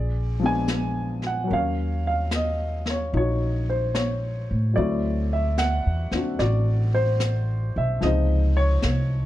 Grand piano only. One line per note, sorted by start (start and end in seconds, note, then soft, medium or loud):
0.00 1.21 G#4 soft
0.00 0.45 D5 medium
0.40 1.49 F3 soft
0.40 1.50 G#3 soft
0.40 1.50 B3 soft
0.44 1.51 D4 soft
0.44 1.28 G#5 medium
1.27 1.50 F#5 medium
1.44 4.72 F#3 soft
1.44 4.75 A#4 soft
1.52 4.77 C#4 soft
1.52 2.89 C#5 soft
1.52 2.03 F5 medium
2.07 2.31 F5 medium
2.35 2.90 D#5 medium
2.90 3.16 C#5 medium
3.14 4.77 D#4 soft
3.14 3.67 C#5 medium
3.18 4.75 F#4 soft
3.70 3.96 C5 medium
3.95 4.72 C#5 medium
4.74 8.01 F#3 soft
4.74 8.01 A3 soft
4.74 6.11 C4 soft
4.74 5.33 D5 medium
4.78 8.03 E4 soft
4.78 6.14 F#4 soft
5.33 5.59 E5 medium
5.58 6.42 F#5 medium
6.13 8.02 C4 soft
6.13 8.03 D4 soft
6.13 6.39 F#4 soft
6.39 7.99 F#4 soft
6.39 6.91 D5 medium
6.94 7.72 C5 medium
7.78 8.04 E5 medium
8.00 9.26 C3 soft
8.00 9.26 F3 soft
8.00 9.26 G#3 soft
8.00 8.54 D#5 medium
8.05 9.26 D#4 soft
8.05 9.26 C5 soft
8.57 9.26 C#5 medium